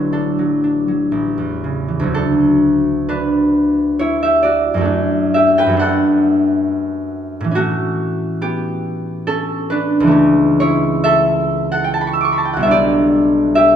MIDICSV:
0, 0, Header, 1, 2, 480
1, 0, Start_track
1, 0, Key_signature, 2, "major"
1, 0, Tempo, 995025
1, 1032, Time_signature, 3, 2, 24, 8
1, 1032, Tempo, 918836
1, 2952, Tempo, 868307
1, 6312, Tempo, 843882
1, 7373, End_track
2, 0, Start_track
2, 0, Title_t, "Harp"
2, 0, Program_c, 0, 46
2, 0, Note_on_c, 0, 33, 77
2, 0, Note_on_c, 0, 45, 50
2, 0, Note_on_c, 0, 50, 55
2, 0, Note_on_c, 0, 54, 65
2, 0, Note_on_c, 0, 62, 56
2, 0, Note_on_c, 0, 71, 97
2, 0, Note_on_c, 0, 74, 78
2, 0, Note_on_c, 0, 78, 101
2, 56, Note_off_c, 0, 62, 0
2, 61, Note_on_c, 0, 62, 62
2, 61, Note_on_c, 0, 69, 65
2, 181, Note_off_c, 0, 54, 0
2, 187, Note_on_c, 0, 54, 51
2, 301, Note_off_c, 0, 62, 0
2, 307, Note_on_c, 0, 62, 57
2, 406, Note_off_c, 0, 71, 0
2, 419, Note_off_c, 0, 54, 0
2, 424, Note_on_c, 0, 54, 52
2, 533, Note_off_c, 0, 33, 0
2, 539, Note_on_c, 0, 33, 64
2, 566, Note_off_c, 0, 50, 0
2, 566, Note_off_c, 0, 54, 0
2, 567, Note_off_c, 0, 62, 0
2, 567, Note_off_c, 0, 78, 0
2, 568, Note_off_c, 0, 45, 0
2, 568, Note_off_c, 0, 74, 0
2, 664, Note_on_c, 0, 40, 48
2, 791, Note_on_c, 0, 49, 48
2, 908, Note_on_c, 0, 52, 45
2, 963, Note_on_c, 0, 38, 81
2, 981, Note_on_c, 0, 54, 65
2, 1028, Note_off_c, 0, 69, 0
2, 1034, Note_on_c, 0, 69, 97
2, 1037, Note_on_c, 0, 62, 73
2, 1046, Note_off_c, 0, 33, 0
2, 1048, Note_off_c, 0, 40, 0
2, 1048, Note_off_c, 0, 52, 0
2, 1050, Note_off_c, 0, 49, 0
2, 1523, Note_off_c, 0, 62, 0
2, 1527, Note_on_c, 0, 71, 94
2, 1530, Note_on_c, 0, 62, 84
2, 2000, Note_on_c, 0, 73, 108
2, 2007, Note_on_c, 0, 64, 83
2, 2122, Note_on_c, 0, 76, 100
2, 2131, Note_on_c, 0, 67, 76
2, 2200, Note_off_c, 0, 73, 0
2, 2227, Note_on_c, 0, 74, 97
2, 2236, Note_on_c, 0, 66, 66
2, 2320, Note_off_c, 0, 76, 0
2, 2332, Note_off_c, 0, 71, 0
2, 2391, Note_on_c, 0, 42, 78
2, 2403, Note_off_c, 0, 54, 0
2, 2409, Note_on_c, 0, 54, 69
2, 2428, Note_on_c, 0, 57, 73
2, 2441, Note_off_c, 0, 62, 0
2, 2447, Note_on_c, 0, 62, 70
2, 2453, Note_off_c, 0, 38, 0
2, 2494, Note_off_c, 0, 64, 0
2, 2497, Note_off_c, 0, 67, 0
2, 2705, Note_on_c, 0, 76, 103
2, 2713, Note_on_c, 0, 67, 91
2, 2829, Note_on_c, 0, 79, 120
2, 2834, Note_on_c, 0, 71, 97
2, 2867, Note_off_c, 0, 42, 0
2, 2873, Note_on_c, 0, 42, 73
2, 2883, Note_off_c, 0, 54, 0
2, 2889, Note_on_c, 0, 54, 72
2, 2902, Note_off_c, 0, 57, 0
2, 2909, Note_on_c, 0, 57, 72
2, 2912, Note_off_c, 0, 76, 0
2, 2921, Note_off_c, 0, 62, 0
2, 2927, Note_on_c, 0, 62, 72
2, 2941, Note_on_c, 0, 78, 105
2, 2944, Note_off_c, 0, 69, 0
2, 2950, Note_on_c, 0, 69, 86
2, 3037, Note_off_c, 0, 79, 0
2, 3831, Note_on_c, 0, 45, 85
2, 3851, Note_on_c, 0, 52, 70
2, 3890, Note_on_c, 0, 61, 73
2, 3896, Note_off_c, 0, 42, 0
2, 3904, Note_off_c, 0, 54, 0
2, 3905, Note_off_c, 0, 66, 0
2, 3911, Note_off_c, 0, 57, 0
2, 3912, Note_on_c, 0, 66, 110
2, 3918, Note_on_c, 0, 57, 101
2, 3924, Note_off_c, 0, 62, 0
2, 3932, Note_off_c, 0, 78, 0
2, 3933, Note_off_c, 0, 74, 0
2, 3938, Note_off_c, 0, 67, 0
2, 3938, Note_off_c, 0, 71, 0
2, 4389, Note_on_c, 0, 59, 68
2, 4391, Note_on_c, 0, 67, 108
2, 4725, Note_off_c, 0, 66, 0
2, 4855, Note_off_c, 0, 69, 0
2, 4860, Note_off_c, 0, 61, 0
2, 4862, Note_on_c, 0, 69, 111
2, 4867, Note_on_c, 0, 61, 75
2, 5099, Note_on_c, 0, 71, 109
2, 5109, Note_on_c, 0, 62, 85
2, 5203, Note_off_c, 0, 67, 0
2, 5267, Note_on_c, 0, 37, 84
2, 5280, Note_off_c, 0, 52, 0
2, 5286, Note_on_c, 0, 52, 75
2, 5300, Note_off_c, 0, 57, 0
2, 5307, Note_on_c, 0, 57, 75
2, 5321, Note_off_c, 0, 61, 0
2, 5324, Note_off_c, 0, 45, 0
2, 5327, Note_on_c, 0, 61, 79
2, 5367, Note_off_c, 0, 59, 0
2, 5588, Note_off_c, 0, 62, 0
2, 5597, Note_on_c, 0, 73, 119
2, 5605, Note_on_c, 0, 64, 91
2, 5839, Note_off_c, 0, 69, 0
2, 5839, Note_on_c, 0, 76, 127
2, 5845, Note_on_c, 0, 69, 98
2, 5924, Note_off_c, 0, 71, 0
2, 6214, Note_off_c, 0, 69, 0
2, 6214, Note_on_c, 0, 78, 100
2, 6220, Note_on_c, 0, 69, 75
2, 6284, Note_on_c, 0, 79, 78
2, 6329, Note_off_c, 0, 78, 0
2, 6337, Note_on_c, 0, 81, 89
2, 6377, Note_off_c, 0, 79, 0
2, 6379, Note_on_c, 0, 83, 93
2, 6412, Note_on_c, 0, 85, 93
2, 6418, Note_off_c, 0, 81, 0
2, 6449, Note_on_c, 0, 88, 89
2, 6452, Note_off_c, 0, 83, 0
2, 6481, Note_off_c, 0, 85, 0
2, 6491, Note_on_c, 0, 86, 98
2, 6512, Note_off_c, 0, 88, 0
2, 6513, Note_on_c, 0, 85, 93
2, 6549, Note_off_c, 0, 86, 0
2, 6555, Note_on_c, 0, 83, 90
2, 6579, Note_off_c, 0, 85, 0
2, 6588, Note_on_c, 0, 81, 88
2, 6622, Note_off_c, 0, 83, 0
2, 6630, Note_on_c, 0, 79, 84
2, 6662, Note_off_c, 0, 81, 0
2, 6676, Note_on_c, 0, 78, 87
2, 6695, Note_on_c, 0, 35, 84
2, 6709, Note_off_c, 0, 79, 0
2, 6718, Note_on_c, 0, 55, 75
2, 6723, Note_off_c, 0, 76, 0
2, 6730, Note_on_c, 0, 76, 96
2, 6736, Note_on_c, 0, 59, 77
2, 6754, Note_on_c, 0, 62, 74
2, 6755, Note_off_c, 0, 37, 0
2, 6759, Note_off_c, 0, 78, 0
2, 6765, Note_off_c, 0, 52, 0
2, 6775, Note_off_c, 0, 57, 0
2, 6778, Note_on_c, 0, 74, 125
2, 6784, Note_on_c, 0, 67, 100
2, 6786, Note_off_c, 0, 61, 0
2, 6799, Note_off_c, 0, 69, 0
2, 6801, Note_off_c, 0, 73, 0
2, 6805, Note_off_c, 0, 64, 0
2, 6811, Note_off_c, 0, 76, 0
2, 7256, Note_on_c, 0, 76, 125
2, 7258, Note_off_c, 0, 67, 0
2, 7265, Note_on_c, 0, 67, 94
2, 7373, Note_off_c, 0, 35, 0
2, 7373, Note_off_c, 0, 55, 0
2, 7373, Note_off_c, 0, 59, 0
2, 7373, Note_off_c, 0, 62, 0
2, 7373, Note_off_c, 0, 67, 0
2, 7373, Note_off_c, 0, 74, 0
2, 7373, Note_off_c, 0, 76, 0
2, 7373, End_track
0, 0, End_of_file